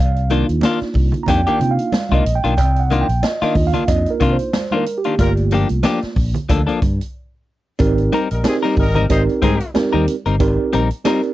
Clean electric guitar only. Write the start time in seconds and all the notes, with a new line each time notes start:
0.31 D#3 A#3 D4 F4
0.63 D#3 A#3 D4 F4
1.29 D#3 A#3 D4 G4
1.47 D#3 A#3 D4 G4
2.12 D#3 A#3 D4 F4
2.44 D#3 A#3 D4 F4
2.91 D#3 A#3 D4 F4
3.42 D#3 A#3 D4 F4
3.74 D#3 A#3 D4 F4
4.20 D#3 A#3 D4 F4
4.72 D#3 A#3 D4 F4
5.05 D#3 A#3 D4 F4
5.52 F3 A#3 D4 G4
5.83 F3 A#3 D4 G4
6.49 F3 A#3 D4 A4
6.67 F3 A#3 D4 A4
8.13 G3 C4 D#4 A#4
8.63 G3 C4 D#4 A#4
8.95 G3 C4 D#4 A#4
9.42 G3 C4 D#4 A#4
9.93 G3 C4 D#4 A#4
10.26 G3 C4 D#4 A#4
10.73 G3 C4 D#4 A#4
11.05 G3 C4 D#4 A#4